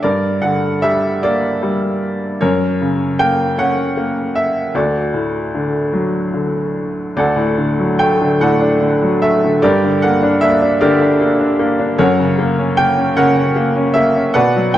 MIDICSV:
0, 0, Header, 1, 2, 480
1, 0, Start_track
1, 0, Key_signature, 2, "major"
1, 0, Tempo, 796813
1, 16, Time_signature, 6, 3, 24, 8
1, 1455, Tempo, 780234
1, 3375, Tempo, 818554
1, 5775, Tempo, 788436
1, 8910, End_track
2, 0, Start_track
2, 0, Title_t, "Upright piano"
2, 0, Program_c, 0, 0
2, 0, Control_c, 0, 64, 127
2, 16, Note_on_c, 0, 74, 65
2, 23, Note_on_c, 0, 43, 49
2, 24, Control_c, 0, 64, 0
2, 24, Note_on_c, 0, 70, 45
2, 115, Control_c, 0, 64, 127
2, 240, Note_off_c, 0, 74, 0
2, 251, Note_on_c, 0, 78, 63
2, 266, Note_on_c, 0, 50, 39
2, 495, Note_on_c, 0, 76, 68
2, 502, Note_on_c, 0, 55, 43
2, 503, Note_off_c, 0, 78, 0
2, 720, Note_off_c, 0, 70, 0
2, 741, Note_on_c, 0, 74, 71
2, 745, Note_off_c, 0, 76, 0
2, 748, Note_on_c, 0, 58, 44
2, 971, Note_off_c, 0, 55, 0
2, 980, Note_on_c, 0, 55, 43
2, 1199, Note_off_c, 0, 50, 0
2, 1254, Note_off_c, 0, 74, 0
2, 1436, Note_off_c, 0, 43, 0
2, 1439, Note_off_c, 0, 58, 0
2, 1442, Note_off_c, 0, 55, 0
2, 1450, Note_on_c, 0, 73, 74
2, 1454, Note_on_c, 0, 70, 51
2, 1459, Note_on_c, 0, 42, 61
2, 1464, Control_c, 0, 64, 0
2, 1577, Control_c, 0, 64, 127
2, 1698, Note_on_c, 0, 49, 46
2, 1933, Note_on_c, 0, 79, 79
2, 1935, Note_on_c, 0, 58, 49
2, 1949, Note_off_c, 0, 73, 0
2, 2150, Note_off_c, 0, 70, 0
2, 2173, Note_on_c, 0, 61, 50
2, 2176, Note_on_c, 0, 78, 70
2, 2181, Note_off_c, 0, 79, 0
2, 2403, Note_off_c, 0, 58, 0
2, 2413, Note_on_c, 0, 58, 42
2, 2628, Note_off_c, 0, 49, 0
2, 2648, Note_on_c, 0, 76, 58
2, 2667, Note_off_c, 0, 78, 0
2, 2869, Note_off_c, 0, 42, 0
2, 2869, Note_off_c, 0, 61, 0
2, 2877, Note_off_c, 0, 58, 0
2, 2889, Note_on_c, 0, 38, 53
2, 2893, Note_on_c, 0, 74, 55
2, 2896, Note_on_c, 0, 66, 41
2, 2897, Note_off_c, 0, 76, 0
2, 2901, Control_c, 0, 64, 0
2, 2999, Control_c, 0, 64, 127
2, 3130, Note_on_c, 0, 45, 39
2, 3381, Note_on_c, 0, 50, 37
2, 3606, Note_on_c, 0, 54, 41
2, 3828, Note_off_c, 0, 74, 0
2, 3829, Note_off_c, 0, 66, 0
2, 3837, Note_off_c, 0, 50, 0
2, 3846, Note_on_c, 0, 50, 36
2, 4066, Note_off_c, 0, 45, 0
2, 4307, Note_off_c, 0, 38, 0
2, 4307, Note_off_c, 0, 54, 0
2, 4316, Note_off_c, 0, 50, 0
2, 4331, Note_on_c, 0, 38, 52
2, 4331, Note_on_c, 0, 74, 63
2, 4340, Control_c, 0, 64, 0
2, 4340, Note_on_c, 0, 78, 44
2, 4343, Note_on_c, 0, 69, 48
2, 4434, Control_c, 0, 64, 127
2, 4445, Note_on_c, 0, 45, 39
2, 4573, Note_on_c, 0, 50, 39
2, 4697, Note_on_c, 0, 54, 43
2, 4795, Note_off_c, 0, 74, 0
2, 4815, Note_on_c, 0, 79, 71
2, 4824, Note_on_c, 0, 57, 46
2, 4936, Note_off_c, 0, 50, 0
2, 4945, Note_on_c, 0, 50, 42
2, 5042, Note_off_c, 0, 78, 0
2, 5042, Note_off_c, 0, 79, 0
2, 5043, Note_off_c, 0, 69, 0
2, 5048, Note_off_c, 0, 45, 0
2, 5057, Note_on_c, 0, 45, 57
2, 5061, Note_on_c, 0, 78, 68
2, 5066, Note_on_c, 0, 74, 49
2, 5068, Note_on_c, 0, 69, 53
2, 5179, Note_on_c, 0, 62, 41
2, 5285, Note_off_c, 0, 50, 0
2, 5293, Note_on_c, 0, 50, 47
2, 5411, Note_off_c, 0, 54, 0
2, 5419, Note_on_c, 0, 54, 43
2, 5531, Note_off_c, 0, 57, 0
2, 5534, Note_on_c, 0, 76, 70
2, 5540, Note_on_c, 0, 57, 46
2, 5556, Note_off_c, 0, 78, 0
2, 5653, Note_off_c, 0, 50, 0
2, 5662, Note_on_c, 0, 50, 45
2, 5754, Note_off_c, 0, 38, 0
2, 5755, Note_off_c, 0, 45, 0
2, 5757, Note_off_c, 0, 74, 0
2, 5758, Note_off_c, 0, 69, 0
2, 5758, Note_off_c, 0, 76, 0
2, 5759, Note_off_c, 0, 62, 0
2, 5766, Note_off_c, 0, 54, 0
2, 5770, Note_off_c, 0, 57, 0
2, 5771, Note_on_c, 0, 74, 76
2, 5776, Note_off_c, 0, 50, 0
2, 5776, Note_on_c, 0, 67, 55
2, 5778, Note_on_c, 0, 70, 53
2, 5784, Note_on_c, 0, 43, 61
2, 5787, Control_c, 0, 64, 0
2, 5903, Note_on_c, 0, 50, 44
2, 5905, Control_c, 0, 64, 127
2, 6014, Note_on_c, 0, 78, 68
2, 6025, Note_off_c, 0, 74, 0
2, 6028, Note_on_c, 0, 58, 43
2, 6138, Note_on_c, 0, 62, 49
2, 6250, Note_on_c, 0, 76, 77
2, 6253, Note_off_c, 0, 58, 0
2, 6262, Note_on_c, 0, 58, 50
2, 6266, Note_off_c, 0, 78, 0
2, 6368, Note_off_c, 0, 62, 0
2, 6377, Note_on_c, 0, 62, 48
2, 6476, Note_off_c, 0, 67, 0
2, 6477, Note_off_c, 0, 70, 0
2, 6492, Note_on_c, 0, 74, 76
2, 6493, Note_off_c, 0, 50, 0
2, 6495, Note_on_c, 0, 70, 58
2, 6496, Note_on_c, 0, 67, 55
2, 6502, Note_on_c, 0, 50, 60
2, 6503, Note_off_c, 0, 76, 0
2, 6607, Note_off_c, 0, 62, 0
2, 6616, Note_on_c, 0, 62, 43
2, 6729, Note_off_c, 0, 58, 0
2, 6738, Note_on_c, 0, 58, 50
2, 6840, Note_off_c, 0, 62, 0
2, 6849, Note_on_c, 0, 62, 49
2, 6962, Note_off_c, 0, 58, 0
2, 6971, Note_on_c, 0, 58, 54
2, 7007, Note_off_c, 0, 74, 0
2, 7083, Note_off_c, 0, 62, 0
2, 7092, Note_on_c, 0, 62, 48
2, 7187, Note_off_c, 0, 67, 0
2, 7187, Note_off_c, 0, 70, 0
2, 7193, Note_off_c, 0, 43, 0
2, 7194, Note_off_c, 0, 50, 0
2, 7204, Note_off_c, 0, 58, 0
2, 7209, Note_off_c, 0, 62, 0
2, 7209, Note_on_c, 0, 73, 80
2, 7212, Note_on_c, 0, 42, 68
2, 7212, Note_on_c, 0, 70, 60
2, 7213, Note_on_c, 0, 78, 59
2, 7222, Control_c, 0, 64, 0
2, 7319, Control_c, 0, 64, 127
2, 7337, Note_on_c, 0, 49, 50
2, 7453, Note_on_c, 0, 58, 49
2, 7575, Note_on_c, 0, 61, 49
2, 7687, Note_off_c, 0, 58, 0
2, 7688, Note_on_c, 0, 79, 82
2, 7696, Note_on_c, 0, 58, 51
2, 7702, Note_off_c, 0, 73, 0
2, 7803, Note_off_c, 0, 61, 0
2, 7812, Note_on_c, 0, 61, 48
2, 7903, Note_off_c, 0, 70, 0
2, 7904, Note_off_c, 0, 78, 0
2, 7911, Note_off_c, 0, 79, 0
2, 7918, Note_off_c, 0, 49, 0
2, 7927, Note_on_c, 0, 49, 60
2, 7929, Note_on_c, 0, 78, 82
2, 7930, Note_on_c, 0, 73, 59
2, 7933, Note_on_c, 0, 70, 59
2, 8044, Note_off_c, 0, 61, 0
2, 8053, Note_on_c, 0, 61, 44
2, 8160, Note_off_c, 0, 58, 0
2, 8169, Note_on_c, 0, 58, 48
2, 8280, Note_off_c, 0, 61, 0
2, 8290, Note_on_c, 0, 61, 48
2, 8398, Note_on_c, 0, 76, 76
2, 8401, Note_off_c, 0, 58, 0
2, 8411, Note_on_c, 0, 58, 50
2, 8424, Note_off_c, 0, 78, 0
2, 8524, Note_off_c, 0, 61, 0
2, 8533, Note_on_c, 0, 61, 44
2, 8627, Note_off_c, 0, 42, 0
2, 8629, Note_off_c, 0, 73, 0
2, 8629, Note_off_c, 0, 76, 0
2, 8630, Note_off_c, 0, 49, 0
2, 8631, Note_off_c, 0, 70, 0
2, 8642, Note_on_c, 0, 78, 81
2, 8646, Note_off_c, 0, 58, 0
2, 8647, Note_on_c, 0, 74, 61
2, 8650, Note_off_c, 0, 61, 0
2, 8651, Note_on_c, 0, 71, 58
2, 8656, Note_on_c, 0, 47, 58
2, 8662, Control_c, 0, 64, 0
2, 8770, Control_c, 0, 64, 127
2, 8777, Note_on_c, 0, 54, 44
2, 8886, Note_on_c, 0, 79, 72
2, 8899, Note_off_c, 0, 78, 0
2, 8910, Note_off_c, 0, 47, 0
2, 8910, Note_off_c, 0, 54, 0
2, 8910, Note_off_c, 0, 71, 0
2, 8910, Note_off_c, 0, 74, 0
2, 8910, Note_off_c, 0, 79, 0
2, 8910, End_track
0, 0, End_of_file